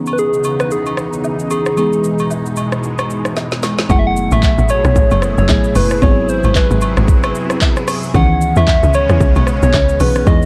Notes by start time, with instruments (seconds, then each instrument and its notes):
Already playing: analog synth pad C#3 E3 B3 D#4, fm electric piano E3 B3 C#4 D#4 G#4
0.06 high agogo, shaker
0.13 soft synth lead B4
0.18 soft synth lead G#4, shaker
0.34 shaker
0.44 high agogo, shaker
0.60 soft synth lead B4, cross-stick, shaker
0.71 soft synth lead G#4, shaker
0.86 high agogo, shaker
0.97 cross-stick, shaker
1.13 shaker
1.24 low woodblock, shaker
1.39 shaker
1.50 soft synth lead G#4, high agogo, shaker
1.66 cross-stick, shaker
1.77 analog synth pad B2 G#3, fm electric piano E3 G#3 B3 D#4 G#4, high agogo, shaker
1.93 shaker
2.04 shaker
2.19 high agogo, shaker
2.30 low woodblock, shaker
2.46 shaker
2.56 high agogo, shaker
2.72 cross-stick, shaker
2.83 shaker
2.98 cross-stick, high agogo, shaker
3.10 shaker
3.25 cross-stick, shaker
3.36 snare, low woodblock, shaker
3.52 snare, shaker
3.63 snare, high agogo, shaker
3.78 snare, shaker
3.89 log drum bass F#1, analog synth pad B2 A3 E4 G#4, fm electric piano F#3 G#3 B3 E4 G#4, soft synth lead F#5, kick, high agogo, shaker
3.96 fm electric piano A3, soft synth lead E5
4.07 soft synth lead F#5
4.16 shaker
4.31 log drum bass A1, soft synth lead E5, high agogo, shaker
4.43 kick, clap, low woodblock, shaker
4.58 log drum bass A1, shaker
4.69 soft synth lead C#5, high agogo, shaker
4.85 log drum bass B1, cross-stick, shaker
4.96 log drum bass A1, kick, shaker
5.11 log drum bass F#1, high agogo, shaker
5.22 cross-stick, shaker
5.38 log drum bass F#1, soft synth lead C#5, shaker
5.49 log drum bass A1, fm electric piano F#3 A3 B3 E4 G#4, kick, clap, low woodblock, shaker
5.64 shaker
5.75 log drum bass F#1, soft synth lead B4, open hi-hat, high agogo, shaker
5.91 cross-stick, shaker
6.01 log drum bass G#1, analog synth pad C3 F#3, fm electric piano F#3 B3 C4 E4 G#4, soft synth lead C#5, kick, high agogo, shaker
6.29 soft synth lead C5, shaker
6.44 log drum bass G#1, high agogo, shaker
6.55 soft synth lead B4, kick, clap, low woodblock, shaker
6.71 log drum bass G#1, shaker
6.81 high agogo, shaker
6.97 log drum bass G#1, cross-stick, shaker
7.08 kick, shaker
7.23 cross-stick, high agogo, shaker
7.35 shaker
7.50 cross-stick, shaker
7.61 kick, clap, low woodblock, shaker
7.77 cross-stick, shaker
7.88 cross-stick, open hi-hat, high agogo, shaker
8.03 shaker
8.14 log drum bass C#2, analog synth pad C#3 G#3 B3 C#4, fm electric piano D#3 E3 B3 C#4 G#4, soft synth lead F#5, kick, high agogo, shaker
8.41 shaker
8.56 log drum bass E2, soft synth lead E5, high agogo, shaker
8.68 kick, clap, low woodblock, shaker
8.83 log drum bass C#2, shaker
8.94 soft synth lead C#5, high agogo, shaker
9.09 log drum bass E2, cross-stick, shaker
9.21 log drum bass C#2, kick, shaker
9.36 log drum bass B1, high agogo, shaker
9.47 cross-stick, shaker
9.63 log drum bass B1, soft synth lead C#5, shaker
9.74 log drum bass C#2, kick, clap, low woodblock, shaker
9.89 shaker
10.00 log drum bass B1, fm electric piano E3 B3 C#4 D#4 G#4, soft synth lead B4, open hi-hat, high agogo, shaker
10.15 cross-stick, shaker
10.26 log drum bass E2, fm electric piano E3 G#3 B3 D#4 G#4, analog synth pad E3 G#3 D#4, soft synth lead D#5, kick, high agogo, shaker
10.42 shaker